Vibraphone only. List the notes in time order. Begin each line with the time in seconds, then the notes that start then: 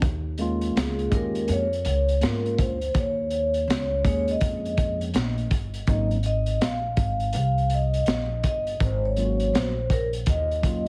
0.79 G#4
1.14 A#4
1.52 C#5
2.25 A#4
2.60 C5
2.98 C#5
4.08 C#5
4.31 D#5
5.90 D#5
6.26 D#5
6.63 F5
7.36 F5
7.74 D#5
8.46 D#5
8.82 C5
9.05 C#5
9.19 C#5
9.56 C5
9.91 A#4
10.29 D#5